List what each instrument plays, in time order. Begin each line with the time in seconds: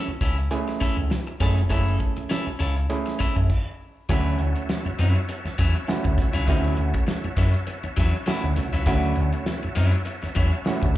Already playing: clav A3 C#4 E4 G#4
0.08 muted clean electric guitar stroke, muted picked electric bass stroke, closed hi-hat
0.21 picked electric bass C#2, clean electric guitar C#4 E4 A4, kick, closed hi-hat
0.38 muted clean electric guitar stroke, closed hi-hat
0.51 clav A3 C#4 E4 G#4, closed hi-hat
0.68 muted clean electric guitar stroke, snare, closed hi-hat
0.80 clean electric guitar C#4 E4 A4, muted picked electric bass stroke, kick, closed hi-hat
0.97 picked electric bass C#2, muted clean electric guitar stroke, closed hi-hat
1.10 muted clean electric guitar stroke, snare
1.27 muted clean electric guitar stroke, closed hi-hat
1.40 picked electric bass F#2, clav A3 C#4 E4 G#4, clean electric guitar C#4 E4 A4, kick, snare, open hi-hat
1.57 picked electric bass F1, muted clean electric guitar stroke, closed hi-hat
1.70 picked electric bass F#1, clav A3 C#4 E4 G#4, clean electric guitar C#4 E4 A4, kick, closed hi-hat
1.88 closed hi-hat
2.00 kick, closed hi-hat
2.17 muted clean electric guitar stroke, muted picked electric bass stroke, closed hi-hat
2.29 clean electric guitar C#4 E4 A4, snare
2.46 muted clean electric guitar stroke, muted picked electric bass stroke, closed hi-hat
2.59 picked electric bass C#2, clean electric guitar C#4 E4 A4, closed hi-hat
2.76 muted clean electric guitar stroke, closed hi-hat
2.90 clav A3 C#4 E4 G#4, closed hi-hat
3.06 muted clean electric guitar stroke, snare, closed hi-hat
3.19 clean electric guitar C#4 E4 A4, muted picked electric bass stroke, kick, closed hi-hat
3.36 picked electric bass F#2, muted clean electric guitar stroke, kick, closed hi-hat
3.50 kick, crash
4.09 picked electric bass D2, clean electric guitar F#3 C#4 E4, clav A3 C#4 E4 F#4, tonewheel organ C#5 E5 F#5 A5, kick, closed hi-hat
4.26 closed hi-hat
4.39 picked electric bass D2, closed hi-hat
4.55 muted clean electric guitar stroke, closed hi-hat
4.70 muted clean electric guitar stroke, snare
4.86 muted picked electric bass stroke, muted clean electric guitar stroke, closed hi-hat
4.99 picked electric bass F#2, clean electric guitar F#3 C#4 E4, closed hi-hat
5.15 muted clean electric guitar stroke, closed hi-hat
5.29 muted clean electric guitar stroke, closed hi-hat
5.45 muted picked electric bass stroke, muted clean electric guitar stroke, snare, closed hi-hat
5.58 picked electric bass E2, clean electric guitar F#3 C#4 E4, kick, closed hi-hat
5.75 muted clean electric guitar stroke, closed hi-hat
5.88 clav A3 C#4 E4 F#4, muted clean electric guitar stroke, snare
6.04 picked electric bass D2, muted clean electric guitar stroke, kick, closed hi-hat
6.18 picked electric bass C2, kick, snare, closed hi-hat
6.33 picked electric bass C#2, clean electric guitar F#3 C#4 E4, closed hi-hat
6.47 picked electric bass D2, clean electric guitar F3 C4 D#4, clav A3 C#4 E4 F#4, kick, closed hi-hat
6.59 clean electric guitar F#3 C#4 E4
6.64 closed hi-hat
6.76 picked electric bass D2, closed hi-hat
6.94 muted clean electric guitar stroke, kick, closed hi-hat
7.07 muted clean electric guitar stroke, snare
7.24 muted picked electric bass stroke, muted clean electric guitar stroke
7.37 picked electric bass F#2, clean electric guitar F#3 C#4 E4, kick, closed hi-hat
7.54 muted clean electric guitar stroke, closed hi-hat
7.67 muted clean electric guitar stroke, closed hi-hat
7.84 muted picked electric bass stroke, muted clean electric guitar stroke, closed hi-hat
7.97 picked electric bass E2, clean electric guitar F#3 C#4 E4, kick, closed hi-hat
8.14 muted clean electric guitar stroke, closed hi-hat
8.26 clean electric guitar F#3 C#4 E4, clav A3 C#4 E4 F#4, snare
8.43 picked electric bass D2, closed hi-hat
8.56 picked electric bass C2, muted clean electric guitar stroke, snare, closed hi-hat
8.73 picked electric bass C#2, clean electric guitar F#3 C#4 E4, closed hi-hat
8.86 picked electric bass D2, clean electric guitar F#3 C#4 E4, clav A3 C#4 E4 F#4, kick, closed hi-hat
9.03 closed hi-hat
9.16 picked electric bass D2, closed hi-hat
9.33 muted clean electric guitar stroke, closed hi-hat
9.46 muted clean electric guitar stroke, snare
9.63 muted clean electric guitar stroke, muted picked electric bass stroke, closed hi-hat
9.75 picked electric bass F#2, clean electric guitar F#3 C#4 E4, closed hi-hat
9.92 muted clean electric guitar stroke, closed hi-hat
10.05 muted clean electric guitar stroke, closed hi-hat
10.22 muted clean electric guitar stroke, muted picked electric bass stroke, snare, closed hi-hat
10.35 picked electric bass E2, clean electric guitar F#3 C#4 E4, kick, closed hi-hat
10.52 muted clean electric guitar stroke, closed hi-hat
10.65 clav A3 C#4 E4 F#4, muted clean electric guitar stroke, snare
10.82 picked electric bass D2, muted clean electric guitar stroke, kick